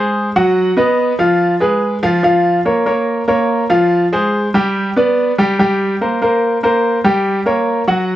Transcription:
0.00 0.28 G#3 medium
0.00 0.28 G#4 medium
0.00 0.28 C5 medium
0.36 0.70 F#3 medium
0.36 0.70 F#4 medium
0.36 0.70 F#5 medium
0.77 1.11 B3 medium
0.77 1.12 B4 medium
0.77 1.12 D#5 medium
1.19 1.53 F3 medium
1.19 1.53 F4 medium
1.19 1.53 F5 medium
1.60 1.95 G#3 medium
1.60 1.95 G#4 medium
1.60 1.95 B4 medium
2.03 2.20 F3 medium
2.03 2.20 F4 medium
2.03 2.20 F5 medium
2.23 2.58 F3 medium
2.23 2.58 F4 medium
2.23 2.58 F5 medium
2.65 2.83 A#3 medium
2.65 2.83 A#4 medium
2.65 2.83 C#5 medium
2.86 3.20 A#3 medium
2.86 3.21 A#4 medium
2.86 3.21 C#5 medium
3.28 3.62 A#3 medium
3.28 3.62 A#4 medium
3.28 3.63 C#5 medium
3.70 4.04 F3 medium
3.70 4.04 F4 medium
3.70 4.04 F5 medium
4.13 4.47 G#3 medium
4.13 4.47 G#4 medium
4.13 4.47 C5 medium
4.54 4.88 G3 medium
4.54 4.89 G4 medium
4.54 4.89 G5 medium
4.96 5.30 B3 medium
4.96 5.31 B4 medium
4.96 5.31 D5 medium
5.38 5.55 G3 medium
5.38 5.55 G4 medium
5.38 5.56 G5 medium
5.59 5.93 G3 medium
5.59 5.93 G4 medium
5.59 5.94 G5 medium
6.01 6.18 A#3 medium
6.01 6.18 A#4 medium
6.01 6.18 C5 medium
6.22 6.56 A#3 medium
6.22 6.56 A#4 medium
6.22 6.56 C5 medium
6.63 6.97 A#3 medium
6.63 6.97 A#4 medium
6.63 6.98 C5 medium
7.04 7.39 G3 medium
7.04 7.39 G4 medium
7.04 7.39 G5 medium
7.46 7.80 A#3 medium
7.46 7.81 A#4 medium
7.46 7.81 C#5 medium
7.87 8.16 F#3 medium
7.87 8.16 F#4 medium
7.87 8.16 F#5 medium

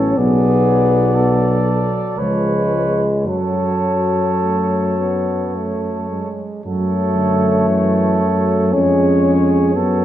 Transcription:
0.00 0.16 A1 medium
0.00 0.17 F#3 medium
0.00 0.19 C#4 medium
0.00 0.16 A4 medium
0.00 0.14 C#5 soft
0.17 2.00 B1 medium
0.17 2.20 F#3 medium
0.17 1.89 B3 medium
0.17 1.17 G#4 medium
0.17 2.20 D5 soft
1.15 2.19 A4 soft
2.17 3.27 C#2 soft
2.17 3.09 F3 soft
2.17 3.28 G#3 medium
2.17 3.10 B4 soft
2.17 3.08 C#5 soft
3.25 6.32 F#2 soft
3.25 4.28 F#3 soft
3.25 6.11 F#3 medium
3.25 6.28 A4 soft
3.25 6.28 C#5 soft
4.42 5.00 A3 soft
4.99 5.57 B3 soft
5.55 6.09 A3 soft
6.10 6.63 G#3 soft
6.64 8.75 F#2 soft
6.64 7.17 F#3 soft
6.64 8.74 A3 medium
6.64 7.66 A4 soft
6.64 8.69 C#5 soft
7.16 7.69 D3 soft
7.68 8.23 E3 medium
7.68 8.75 A4 soft
8.21 8.75 F#3 medium
8.73 9.77 F2 medium
8.73 9.76 G#3 soft
8.73 9.74 C#4 medium
8.73 9.78 G#4 medium
8.73 9.74 C#5 soft
9.75 10.05 F#2 soft
9.75 10.05 F#3 medium
9.75 10.05 B3 medium
9.75 10.05 A4 medium
9.75 10.05 C#5 soft

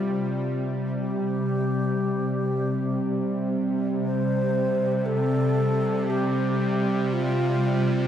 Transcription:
0.00 8.08 C3 medium
0.00 8.08 G3 medium
0.00 0.74 F4 medium
1.00 3.49 G4 medium
4.05 5.07 C5 medium
5.06 6.11 A4 loud
6.10 7.15 G4 medium
7.13 8.08 F4 medium

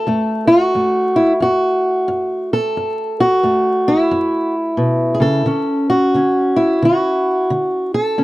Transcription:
0.00 0.47 A4 medium
0.07 0.69 F#2 medium
0.07 0.75 A3 soft
0.48 1.41 F#4 loud
0.75 1.37 F#2 medium
0.75 3.43 A3 soft
1.16 1.32 E4 medium
1.40 2.03 F#2 medium
1.40 2.50 F#4 medium
2.08 2.71 F#2 medium
2.53 3.19 A4 medium
2.77 3.39 F#2 medium
3.20 4.54 F#4 medium
3.43 4.06 F#2 medium
3.43 5.46 A3 soft
3.88 5.49 E4 medium
4.11 4.74 F#2 medium
4.77 5.19 B2 medium
5.14 5.21 G#4 medium
5.20 5.45 C#3 medium
5.20 5.89 A4 medium
5.46 6.09 D3 medium
5.46 6.15 C#4 soft
5.90 6.84 F#4 medium
6.14 6.77 D3 medium
6.14 8.18 C#4 soft
6.56 7.51 E4 medium
6.82 7.45 D3 medium
6.82 7.92 F#4 medium
7.50 8.13 D3 medium
7.94 8.24 A4 medium
8.18 8.24 D3 medium
8.18 8.24 C#4 soft

